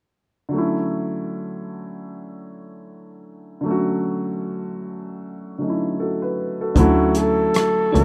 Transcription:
0.49 upright piano D3 F#3
0.54 upright piano A3 C#4
0.58 upright piano E4
3.61 upright piano D3 F#3
3.66 upright piano A3 C#4
3.71 upright piano F#4
5.58 upright piano D3 F#3 A3 C#4
5.63 upright piano D#4
5.69 upright piano E4
6.00 upright piano F#4 A4
6.22 upright piano B4
6.61 upright piano F#4 A4
6.75 double bass D2, upright piano D3 F#3 A3 C#4, kick, closed hi-hat
6.79 upright piano E4, flugelhorn F#4
7.15 flugelhorn A4, cross-stick, closed hi-hat
7.54 cross-stick, closed hi-hat
7.92 double bass C#2, clean electric guitar F#3 C#4 E4 A4, upright piano F#3 A3 C#4 D4, flugelhorn B4, closed hi-hat
7.97 upright piano F#4

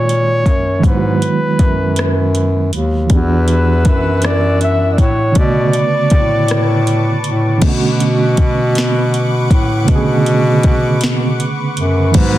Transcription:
Already playing: bass clarinet A#2, reed electric piano D#3 G#3 A#3 D#4 F#4, flugelhorn C#5
0.09 closed hi-hat
0.46 bass clarinet F#2, kick, closed hi-hat
0.80 reed electric piano D#3 G#3, kick
0.84 bass clarinet G#2, reed electric piano F#3 B3, flugelhorn B4, closed hi-hat
0.90 reed electric piano E4
0.97 reed electric piano F#4
1.22 closed hi-hat
1.59 bass clarinet F#2, kick, closed hi-hat
1.96 cross-stick, closed hi-hat
2.35 closed hi-hat
2.73 bass clarinet D#2, closed hi-hat
3.06 reed electric piano E3 G4, analog synth pad E4 F#5 E6, kick, closed hi-hat
3.11 bass clarinet E2, reed electric piano B3 D4, flugelhorn B4
3.17 reed electric piano F#4
3.48 closed hi-hat
3.85 bass clarinet F#2, kick, closed hi-hat
4.22 flugelhorn D5, cross-stick, closed hi-hat
4.61 flugelhorn E5, closed hi-hat
4.93 flugelhorn D5
4.98 bass clarinet A2, flugelhorn C#5, kick, closed hi-hat
5.32 reed electric piano D3 A3, analog synth pad B4 A5 C#6 D6, kick, closed hi-hat
5.37 bass clarinet B2, reed electric piano C#3 B3, flugelhorn D5
5.42 reed electric piano F#4
5.73 closed hi-hat
6.10 bass clarinet A2, kick, closed hi-hat
6.48 cross-stick, closed hi-hat
6.87 closed hi-hat
7.24 bass clarinet A2, closed hi-hat
7.58 reed electric piano D3 A3, analog synth pad B4 F#5, closed hi-hat
7.62 bass clarinet B2, reed electric piano B3, analog synth pad C#6 D6, kick, crash
7.66 reed electric piano C#4 F#4
8.00 closed hi-hat
8.37 kick, closed hi-hat
8.75 snare, closed hi-hat
9.14 closed hi-hat
9.50 bass clarinet A2, kick, closed hi-hat
9.85 reed electric piano C#3 A3, kick, closed hi-hat
9.89 bass clarinet B2, reed electric piano D3 B3 C#4
9.96 reed electric piano G#4
10.26 closed hi-hat
10.63 kick, closed hi-hat
11.01 snare, closed hi-hat
11.40 closed hi-hat
11.77 bass clarinet F#2, closed hi-hat
12.11 bass clarinet G#2, reed electric piano D#3 G#3, analog synth pad G#4 F#5 A#5 B5, kick, closed hi-hat, crash
12.17 reed electric piano F#3 B3, flugelhorn B4
12.22 reed electric piano F#4

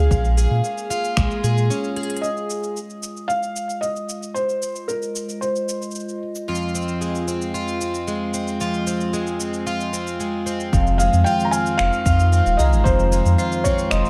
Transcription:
Already playing: twelve-string acoustic guitar G#3 C#4 F4 G#4, felt piano F5
0.11 sub bass A#1, twelve-string acoustic guitar A#2, kick, cabasa
0.25 cabasa
0.37 twelve-string acoustic guitar G#4, cabasa
0.51 sub bass A#2
0.64 twelve-string acoustic guitar C#4, cabasa
0.78 cabasa
0.90 twelve-string acoustic guitar F4, cabasa
1.04 cabasa
1.17 sub bass A#1, twelve-string acoustic guitar G#3, finger snap, kick, cabasa
1.31 cabasa
1.43 sub bass A#2, twelve-string acoustic guitar G#4, cabasa
1.58 cabasa
1.70 twelve-string acoustic guitar C#4, cabasa
1.84 cabasa
1.96 twelve-string acoustic guitar G#4, closed hi-hat
2.03 closed hi-hat
2.10 closed hi-hat
2.17 closed hi-hat
2.21 ambient pad G#3 F4 D#5, felt piano D#5, cabasa
2.37 cabasa
2.50 cabasa
2.63 cabasa
2.77 cabasa
2.90 cabasa
3.03 cabasa
3.17 cabasa
3.28 felt piano F5, cabasa
3.43 cabasa
3.56 cabasa
3.70 cabasa
3.81 felt piano D#5, cabasa
3.96 cabasa
4.09 cabasa
4.23 cabasa
4.34 felt piano C5, cabasa
4.49 cabasa
4.63 cabasa
4.76 cabasa
4.88 felt piano A#4, cabasa
5.02 cabasa
5.16 cabasa
5.29 cabasa
5.41 felt piano C5, cabasa
5.56 cabasa
5.69 cabasa
5.82 cabasa
5.91 cabasa
5.95 cabasa
6.00 cabasa
6.09 cabasa
6.35 cabasa
6.48 twelve-string acoustic guitar F2 F4
6.55 cabasa
6.62 cabasa
6.69 cabasa
6.75 twelve-string acoustic guitar C4, cabasa
6.82 cabasa
6.88 cabasa
7.01 twelve-string acoustic guitar G#3, cabasa
7.15 cabasa
7.28 twelve-string acoustic guitar C4, cabasa
7.42 cabasa
7.54 twelve-string acoustic guitar F4, cabasa
7.68 cabasa
7.81 twelve-string acoustic guitar C4, cabasa
7.94 cabasa
8.08 twelve-string acoustic guitar G#3, cabasa
8.34 twelve-string acoustic guitar C4, cabasa
8.48 cabasa
8.60 twelve-string acoustic guitar F2 F4, cabasa
8.74 cabasa
8.87 twelve-string acoustic guitar C4, cabasa
9.01 cabasa
9.13 twelve-string acoustic guitar G#3, cabasa
9.27 cabasa
9.40 twelve-string acoustic guitar C4, cabasa
9.54 cabasa
9.67 twelve-string acoustic guitar F4, cabasa
9.80 cabasa
9.93 twelve-string acoustic guitar C4, cabasa
10.07 cabasa
10.20 twelve-string acoustic guitar G#3, cabasa
10.46 twelve-string acoustic guitar C4, cabasa
10.60 cabasa
10.73 sub bass F1, twelve-string acoustic guitar F2, ambient pad D#3 G#3 F4, vibraphone F5, kick, cabasa
10.87 cabasa
10.98 twelve-string acoustic guitar G#3, felt piano F5, cabasa
11.13 sub bass F2, cabasa
11.24 twelve-string acoustic guitar F4, felt piano G5, cabasa
11.40 cabasa
11.45 felt piano A#5
11.51 twelve-string acoustic guitar C4, felt piano G#5, vibraphone F6, cabasa
11.66 cabasa
11.78 sub bass F1, twelve-string acoustic guitar D#3, felt piano F5, finger snap, cabasa
11.93 cabasa
12.06 sub bass F2, twelve-string acoustic guitar F4, vibraphone F5, kick, cabasa
12.20 cabasa
12.32 twelve-string acoustic guitar C4, cabasa
12.46 sub bass D#1, cabasa
12.57 sub bass C2, twelve-string acoustic guitar G#3, felt piano D#5, vibraphone A#5, cabasa
12.72 sub bass G#1, cabasa
12.84 sub bass F1, twelve-string acoustic guitar F2, felt piano C5, kick, cabasa
13.00 cabasa
13.12 twelve-string acoustic guitar G#3, cabasa
13.25 sub bass F2, cabasa
13.38 twelve-string acoustic guitar F4, vibraphone C5, cabasa
13.52 cabasa
13.64 twelve-string acoustic guitar C4, felt piano C#5, kick, cabasa
13.79 cabasa
13.90 sub bass F1, twelve-string acoustic guitar D#3, felt piano D#5, vibraphone C6, finger snap, cabasa
14.05 cabasa

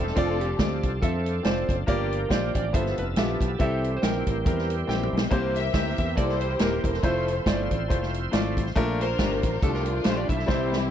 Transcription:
Already playing: fingered electric bass E1, tonewheel organ F3 C4 E4 A4, string section E4 A4, electric slide guitar A4
0.00 string section C4 D4
0.07 snare
0.16 fingered electric bass F1, grand piano C4 F4 A4 D5, tonewheel organ D4, electric slide guitar F4, kick, closed hi-hat
0.41 electric slide guitar G4, closed hi-hat
0.59 fingered electric bass D2, grand piano C4 F4 A4 D5, kick, snare, closed hi-hat
0.83 fingered electric bass C2, kick, closed hi-hat
1.02 fingered electric bass F2, grand piano C4 F4 A4 E5, electric slide guitar A4, kick, closed hi-hat
1.26 closed hi-hat
1.43 fingered electric bass F1, grand piano C4 F4 A4 D5, electric slide guitar C5, snare, closed hi-hat
1.68 fingered electric bass F#1, kick, closed hi-hat
1.87 fingered electric bass G1, grand piano G2 A#3 F4 G4 D5, tonewheel organ A#3 G4, electric slide guitar A#4, kick, closed hi-hat
2.12 closed hi-hat
2.29 fingered electric bass A#1, grand piano A#3 F4 G4 C5, electric slide guitar D5, kick, snare, closed hi-hat
2.55 fingered electric bass A1, electric slide guitar D5, kick, closed hi-hat
2.73 fingered electric bass G1, grand piano G2 B3 F4 A4 E5, tonewheel organ B3 E4 A4, electric slide guitar C5, kick, closed hi-hat
2.86 snare
2.98 fingered electric bass F1, electric slide guitar B4, closed hi-hat
3.16 fingered electric bass A#1, grand piano B3 F4 A4 E5, electric slide guitar G4, snare, closed hi-hat
3.41 fingered electric bass B1, kick, closed hi-hat
3.59 fingered electric bass C2, grand piano C3 C4 E4 G4 E5, tonewheel organ E3 G3 C4 G4, electric slide guitar A4, kick, closed hi-hat
3.84 closed hi-hat
3.97 electric slide guitar C5
4.02 fingered electric bass A#1, grand piano C4 E4 G4 G5, electric slide guitar A#4, snare, closed hi-hat
4.27 fingered electric bass A1, kick, closed hi-hat
4.44 fingered electric bass E2, grand piano C4 E4 G4 A#4, kick, closed hi-hat
4.58 snare
4.70 closed hi-hat
4.87 fingered electric bass A#1, grand piano C4 E4 G4 G5, snare
5.03 mid tom
5.13 fingered electric bass B1
5.17 snare
5.31 fingered electric bass C2, grand piano C3 A#3 E4 G4 C5, tonewheel organ A#3, electric slide guitar C5, kick, closed hi-hat
5.56 string section G4 A#4 E5, closed hi-hat
5.74 fingered electric bass D2, grand piano A#3 E4 G4 C5, electric slide guitar E5, kick, snare, closed hi-hat
5.98 fingered electric bass E2, electric slide guitar E5, kick, closed hi-hat
6.16 fingered electric bass C2, grand piano A#3 E4 G4 A4, string section E4 G4 C5, electric slide guitar D5, kick, closed hi-hat
6.29 snare
6.41 electric slide guitar C5, closed hi-hat
6.59 fingered electric bass D#1, grand piano A#3 E4 G4 C5, string section A#4, electric slide guitar A#4, snare, closed hi-hat
6.84 fingered electric bass E1, string section E4 A4 C5, kick, closed hi-hat
6.94 snare
7.03 fingered electric bass F1, tonewheel organ F3 E4 C5, grand piano A3 E4 F4 C5, electric slide guitar C5, kick, closed hi-hat
7.28 closed hi-hat
7.46 fingered electric bass G1, grand piano A3 E4 F4 C5, electric slide guitar D5, kick, snare, closed hi-hat
7.71 fingered electric bass A1, kick, closed hi-hat
7.88 fingered electric bass F1, grand piano A3 E4 F4 C5, kick, closed hi-hat
8.03 snare
8.14 closed hi-hat
8.31 fingered electric bass G#1, grand piano A3 E4 F4 D5, snare, closed hi-hat
8.57 fingered electric bass A1, kick, closed hi-hat
8.66 snare
8.75 fingered electric bass A#1, grand piano A#2 A3 D4 F4 A#4, tonewheel organ D4, kick, closed hi-hat
9.00 string section D4 F4 A#4, electric slide guitar C5, closed hi-hat
9.18 fingered electric bass G1, grand piano A3 D4 F4 G4, kick, snare, closed hi-hat
9.43 fingered electric bass A1, kick, closed hi-hat
9.61 fingered electric bass C2, grand piano A3 D4 F4 G4, string section D4 F4 A4, electric slide guitar A4, kick, closed hi-hat
9.74 electric slide guitar A#4, snare
9.85 string section A3 D4 F4, closed hi-hat
10.04 fingered electric bass A#1, grand piano A3 D4 F4 G4, electric slide guitar C5, snare, closed hi-hat
10.17 electric slide guitar D5
10.28 fingered electric bass B1, string section G3 C4 E4, electric slide guitar E5, kick, closed hi-hat
10.39 snare
10.46 fingered electric bass C2, grand piano C3 G3 C4 E4 C5, tonewheel organ E3 G3 C4 G4, kick, snare
10.72 snare

